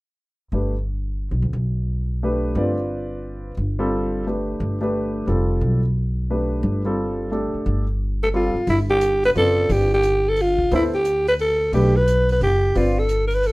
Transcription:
0.52 1.28 G1 medium
0.52 0.72 A3 soft
0.52 0.73 D4 soft
0.52 0.73 G4 soft
0.52 0.73 B4 soft
1.31 1.42 B1 medium
1.42 1.53 D2 medium
1.53 2.52 B1 medium
2.23 2.74 A3 medium
2.23 2.74 D4 soft
2.23 2.74 G4 soft
2.23 2.56 B4 medium
2.55 3.53 G1 medium
2.55 3.51 C4 medium
2.55 3.51 F4 medium
2.55 3.51 B4 medium
2.55 3.51 D5 medium
3.57 4.55 G1 medium
3.79 4.23 G3 medium
3.79 4.23 C4 medium
3.79 4.23 F4 medium
3.79 4.24 A4 medium
4.27 4.77 A3 soft
4.27 4.78 D4 soft
4.27 4.78 G4 soft
4.27 4.78 B4 soft
4.60 5.24 G1 medium
4.81 5.25 A3 medium
4.81 5.25 D4 soft
4.81 5.25 G4 medium
4.81 5.26 B4 medium
5.27 5.59 F1 medium
5.27 5.79 G3 soft
5.27 5.79 C4 soft
5.27 5.80 F4 soft
5.27 5.80 A4 medium
5.61 6.59 B1 medium
6.30 6.81 A3 soft
6.30 6.81 D4 soft
6.30 6.81 G4 soft
6.30 6.81 B4 medium
6.63 7.49 G1 medium
6.85 7.29 G3 medium
6.85 7.29 C4 soft
6.85 7.29 F4 medium
6.85 7.29 A4 medium
7.31 7.83 A3 soft
7.31 7.83 D4 soft
7.31 7.83 G4 soft
7.31 7.83 A4 medium
7.54 muted upright bass stroke soft
7.66 8.51 G1 medium
8.23 8.28 A4 medium
8.34 8.53 G3 medium
8.34 8.53 C4 medium
8.34 8.53 F4 soft
8.34 8.66 F4 medium
8.34 8.54 A4 medium
8.55 muted upright bass stroke soft
8.67 9.31 G1 medium
8.67 8.79 E4 medium
8.67 open hi-hat soft
8.90 9.21 G4 medium
9.01 closed hi-hat soft
9.24 9.30 B4 medium
9.24 open hi-hat soft
9.35 9.67 F#1 medium
9.35 9.87 C4 medium
9.35 9.87 F4 soft
9.35 9.73 A4 medium
9.35 9.87 B4 soft
9.35 9.88 D5 medium
9.35 open hi-hat soft
9.69 10.67 G1 medium
9.69 9.92 G4 medium
9.69 open hi-hat soft
9.94 10.30 G4 medium
10.03 closed hi-hat soft
10.29 10.43 A4 medium
10.36 open hi-hat soft
10.42 10.73 F4 medium
10.59 kick soft
10.71 11.69 D2 medium
10.71 10.91 B3 medium
10.71 10.91 E4 medium
10.71 10.84 E4 medium
10.71 10.92 A4 medium
10.71 10.92 C5 medium
10.71 open hi-hat soft
10.94 11.25 G4 medium
11.05 closed hi-hat soft
11.28 11.34 B4 medium
11.28 open hi-hat soft
11.39 11.72 A4 medium
11.39 open hi-hat soft
11.72 12.37 B1 medium
11.72 11.93 A3 medium
11.72 11.93 D4 medium
11.72 11.98 G4 medium
11.72 11.93 G4 medium
11.72 11.94 B4 medium
11.72 open hi-hat soft
11.96 12.30 B4 medium
12.08 closed hi-hat soft
12.29 12.42 B4 medium
12.29 open hi-hat soft
12.41 12.73 F#1 medium
12.41 12.79 G4 medium
12.41 open hi-hat soft
12.75 13.51 G1 medium
12.75 12.95 C4 medium
12.75 12.95 F4 medium
12.75 13.00 F4 medium
12.75 12.95 B4 medium
12.75 12.95 D5 medium
12.75 open hi-hat soft
12.99 13.27 A4 medium
13.09 closed hi-hat soft
13.27 13.36 A#4 medium
13.27 open hi-hat soft
13.34 13.48 B4 medium
13.43 13.52 A4 medium
13.43 open hi-hat soft

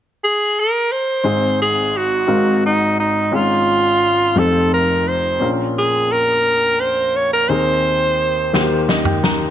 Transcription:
0.24 0.61 G#4 medium
0.59 0.93 A#4 medium
0.91 1.59 C5 medium
1.24 2.24 G#1 soft
1.24 2.24 G#2 soft
1.24 2.26 C4 soft
1.24 2.28 D#4 soft
1.24 2.28 G#4 medium
1.61 1.99 G#4 medium
1.97 2.64 F#4 medium
2.27 3.28 G#1 soft
2.27 3.28 G#2 soft
2.27 3.32 G#3 soft
2.27 3.31 C4 soft
2.27 3.32 F#4 soft
2.27 3.32 A#4 soft
2.27 3.32 F5 soft
2.66 2.96 D#4 medium
3.00 3.36 D#4 medium
3.32 4.32 G#1 soft
3.32 4.32 G#2 soft
3.32 4.36 C#4 soft
3.32 4.35 F4 soft
3.32 4.41 F4 medium
3.32 4.37 G#4 soft
4.35 5.36 F1 soft
4.35 5.36 F2 soft
4.35 5.40 F3 soft
4.35 5.40 C4 soft
4.35 5.40 D#4 soft
4.35 5.39 F4 soft
4.35 4.72 A4 medium
4.35 5.40 C5 soft
4.74 5.09 A#4 medium
5.08 5.49 C5 medium
5.40 7.45 A#1 soft
5.40 7.45 A#2 soft
5.40 7.44 C#4 soft
5.40 7.45 F4 soft
5.40 7.45 A#4 soft
5.78 6.13 G#4 medium
6.12 6.82 A#4 medium
6.80 7.17 C5 medium
7.16 7.32 C#5 medium
7.33 7.50 A#4 medium
7.48 8.49 D#2 soft
7.48 8.49 D#3 soft
7.48 8.53 C4 soft
7.48 8.52 D#4 soft
7.48 8.53 G#4 soft
7.48 8.87 C5 medium
8.53 9.50 D#2 soft
8.53 9.50 D#3 medium
8.53 9.50 A#3 medium
8.53 9.50 D#4 soft
8.53 8.60 F#4 soft
8.53 snare soft
8.60 9.50 G4 medium
8.88 9.04 D#5 soft
8.88 snare soft
9.05 9.22 G5 soft
9.05 mid tom soft
9.24 9.50 A#5 soft
9.24 snare medium

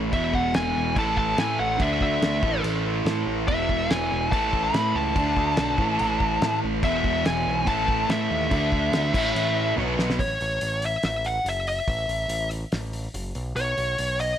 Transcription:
0.00 0.13 A1 medium
0.00 0.11 A2 medium
0.00 0.12 E3 medium
0.00 0.13 A3 loud
0.12 0.31 E1 medium
0.12 0.95 E2 medium
0.12 0.95 B2 loud
0.12 0.33 E5 medium
0.12 kick loud
0.12 crash medium
0.16 0.96 E3 loud
0.34 0.52 E1 medium
0.34 0.55 F#5 medium
0.34 kick medium
0.54 0.74 E1 medium
0.54 0.94 G#5 loud
0.54 snare loud
0.54 crash medium
0.76 0.94 E1 medium
0.95 1.33 A1 medium
0.95 1.78 A2 medium
0.95 1.79 E3 medium
0.95 1.79 A3 medium
0.95 1.17 A5 loud
0.95 kick loud
0.95 crash medium
1.17 1.39 A5 loud
1.17 kick medium
1.38 1.57 A2 loud
1.38 1.59 G#5 loud
1.38 snare loud
1.38 crash medium
1.59 1.78 A1 medium
1.59 1.81 F#5 medium
1.78 1.99 D2 medium
1.78 2.41 D3 medium
1.78 2.42 A3 loud
1.78 2.02 E5 medium
1.78 kick loud
1.78 crash medium
1.82 2.43 D4 loud
2.01 2.20 D2 medium
2.01 2.61 E5 medium
2.01 kick medium
2.21 2.40 D2 medium
2.21 snare loud
2.21 crash medium
2.41 2.61 A1 medium
2.41 3.46 A2 medium
2.41 3.47 E3 medium
2.41 kick loud
2.45 3.48 A3 loud
2.63 3.01 A1 loud
2.63 crash medium
3.05 3.24 A2 medium
3.05 snare loud
3.05 crash medium
3.26 3.45 A1 medium
3.47 3.67 E1 loud
3.47 4.30 E2 medium
3.47 4.31 B2 medium
3.47 3.91 E5 medium
3.47 kick loud
3.47 crash medium
3.52 4.32 E3 medium
3.69 3.88 E1 medium
3.69 kick medium
3.90 4.09 E1 medium
3.90 4.32 G#5 medium
3.90 snare loud
3.90 crash medium
4.12 4.30 E1 medium
4.31 4.69 A1 medium
4.31 5.14 A2 medium
4.31 5.15 E3 medium
4.31 5.16 A3 medium
4.31 4.64 A5 loud
4.31 kick loud
4.31 crash medium
4.53 kick medium
4.64 4.96 B5 loud
4.74 4.92 A2 medium
4.74 snare loud
4.74 crash medium
4.95 5.14 C#2 medium
4.95 6.59 A5 loud
5.15 5.35 D2 loud
5.15 5.77 D3 medium
5.15 5.78 A3 loud
5.15 5.79 D4 loud
5.15 kick loud
5.15 crash medium
5.37 5.55 D2 medium
5.37 kick medium
5.57 5.76 B1 medium
5.57 snare loud
5.57 crash medium
5.77 5.97 A1 medium
5.77 6.81 A2 medium
5.77 6.82 E3 medium
5.77 kick loud
5.81 6.83 A3 medium
5.99 6.37 A1 loud
5.99 crash medium
6.20 kick medium
6.42 6.60 A2 medium
6.42 snare loud
6.42 crash medium
6.64 6.83 A1 medium
6.83 7.02 E1 medium
6.83 7.66 E2 medium
6.83 7.65 B2 loud
6.83 7.67 E3 loud
6.83 7.23 E5 medium
6.83 kick loud
6.83 crash medium
7.04 7.23 E1 medium
7.04 kick medium
7.25 7.44 E1 medium
7.25 7.68 G#5 medium
7.25 snare loud
7.25 crash medium
7.47 7.68 B1 medium
7.66 8.04 A1 loud
7.66 8.49 A2 loud
7.66 8.50 E3 medium
7.66 8.11 A5 loud
7.66 kick loud
7.66 crash medium
7.70 8.51 A3 medium
7.88 kick medium
8.09 8.28 A2 medium
8.09 9.74 E5 medium
8.09 snare loud
8.09 crash medium
8.31 8.49 D#2 medium
8.50 8.70 D2 medium
8.50 9.12 D3 loud
8.50 9.13 A3 loud
8.50 9.14 D4 loud
8.50 kick loud
8.50 crash medium
8.72 8.91 D2 medium
8.72 kick medium
8.92 9.11 D2 medium
8.92 snare loud
8.92 crash medium
9.13 9.33 A1 medium
9.13 9.75 A2 medium
9.13 9.76 E3 loud
9.13 9.77 A3 loud
9.13 kick loud
9.13 crash loud
9.35 9.72 A1 medium
9.35 crash medium
9.76 9.95 B1 medium
9.76 10.17 B2 medium
9.76 10.18 F#3 loud
9.76 high tom medium
9.80 10.20 B3 loud
9.98 10.20 B1 medium
9.98 snare medium
10.10 snare medium
10.19 10.37 A1 medium
10.19 10.84 C#5 medium
10.19 kick medium
10.19 open hi-hat medium
10.40 10.58 A1 medium
10.40 open hi-hat soft
10.61 10.96 A1 medium
10.61 open hi-hat medium
10.82 11.04 E5 medium
10.82 open hi-hat soft
11.03 11.38 A1 medium
11.03 11.26 E5 medium
11.03 snare loud
11.03 open hi-hat medium
11.25 11.47 F#5 medium
11.25 open hi-hat soft
11.44 11.79 F#1 medium
11.44 open hi-hat medium
11.49 11.67 E5 medium
11.67 12.48 E5 medium
11.67 open hi-hat soft
11.88 12.05 A1 medium
11.88 kick loud
11.88 open hi-hat medium
12.08 12.26 A1 medium
12.08 open hi-hat soft
12.28 12.63 A1 medium
12.28 open hi-hat medium
12.51 open hi-hat medium
12.72 13.07 A1 medium
12.72 snare loud
12.72 open hi-hat medium
12.93 open hi-hat soft
13.14 13.31 F#1 medium
13.14 open hi-hat medium
13.35 13.53 B1 medium
13.35 open hi-hat soft
13.56 13.73 B1 medium
13.56 14.20 C#5 medium
13.56 open hi-hat medium
13.77 13.95 B1 medium
13.77 open hi-hat soft
13.98 14.33 B1 medium
13.98 open hi-hat medium
14.19 14.39 D#5 medium
14.19 open hi-hat soft

